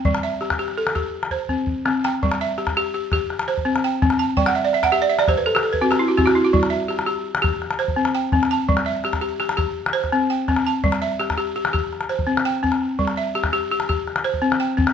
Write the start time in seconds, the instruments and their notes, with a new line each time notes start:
Already playing: balafon G5
0.05 balafon G3, calabash thump
0.15 calabash click
0.23 balafon E5
0.41 balafon G4, calabash click
0.50 calabash thump, calabash click
0.59 balafon G4
0.68 calabash click
0.78 balafon A4
0.87 calabash click
0.95 balafon G4, calabash thump
1.23 calabash click
1.31 balafon C5, calabash thump
1.49 balafon C4, calabash thump
1.67 calabash thump
1.85 balafon C4, calabash click
2.04 balafon G5, calabash click
2.23 balafon G3, calabash thump
2.32 calabash click
2.41 balafon E5
2.58 balafon G4, calabash click
2.67 calabash thump, calabash click
2.77 balafon G4
2.94 balafon G4
3.12 balafon G4, calabash thump, calabash click
3.30 calabash click
3.39 calabash click
3.48 balafon C5, calabash click
3.57 calabash thump
3.65 balafon C4
3.76 calabash click
3.84 balafon G5
4.02 balafon C4, calabash thump
4.10 calabash click
4.19 balafon A5
4.37 balafon G3 G5, calabash thump
4.46 balafon F#5, calabash click
4.55 balafon E5
4.65 balafon D5
4.73 balafon E5, calabash click
4.83 balafon F#5, calabash thump, calabash click
4.92 balafon G4 E5
5.02 balafon D5
5.10 balafon E5
5.19 balafon D5, calabash click
5.28 balafon G4 C5, calabash thump, calabash click
5.37 balafon B4
5.46 balafon A4, calabash click
5.55 balafon G4, calabash click
5.63 balafon A4, calabash click
5.73 balafon B4, calabash thump
5.81 balafon C4 F#4
5.91 balafon G4, calabash click
5.99 balafon E4
6.08 balafon F#4
6.17 balafon C4 G4, calabash thump
6.26 balafon F#4, calabash click
6.35 balafon E4
6.44 balafon F#4
6.53 balafon G3, calabash thump
6.63 calabash click
6.70 balafon E5
6.88 balafon G4, calabash click
6.99 calabash click
7.07 balafon G4
7.35 calabash click
7.42 balafon G4, calabash thump, calabash click
7.62 calabash click
7.71 calabash click
7.79 balafon C5, calabash click
7.88 calabash thump
7.96 balafon C4
8.05 calabash click
8.15 balafon G5
8.32 balafon C4, calabash thump
8.43 calabash click
8.51 balafon A5
8.69 balafon G3, calabash thump
8.77 calabash click
8.86 balafon E5
9.04 balafon G4, calabash click
9.13 calabash thump, calabash click
9.21 balafon G4
9.40 balafon G4, calabash click
9.49 calabash click
9.57 balafon G4, calabash thump
9.86 calabash click
9.93 balafon C5, calabash click
10.04 calabash thump, calabash click
10.12 balafon C4, calabash click
10.30 balafon G5
10.48 balafon C4, calabash thump, calabash click
10.56 calabash click
10.67 balafon A5
10.84 balafon G3, calabash thump
10.92 calabash click
11.02 balafon E5
11.20 balafon G4, calabash click
11.30 calabash thump, calabash click
11.37 balafon G4
11.56 balafon G4
11.65 calabash click
11.73 balafon G4, calabash thump, calabash click
11.93 calabash click
12.01 calabash click
12.09 balafon C5, calabash click
12.19 calabash thump
12.27 balafon C4
12.37 calabash click
12.45 balafon G5
12.63 balafon C4, calabash thump
12.72 calabash click
12.99 balafon G3, calabash thump
13.07 calabash click
13.17 balafon E5
13.35 balafon G4, calabash click
13.44 calabash thump, calabash click
13.53 balafon G4
13.71 balafon G4
13.80 calabash click
13.89 balafon G4, calabash thump, calabash click
14.08 calabash click
14.16 calabash click
14.24 balafon C5, calabash click
14.34 calabash thump
14.42 balafon C4
14.52 calabash click
14.60 balafon G5
14.77 balafon C4, calabash thump
14.87 calabash click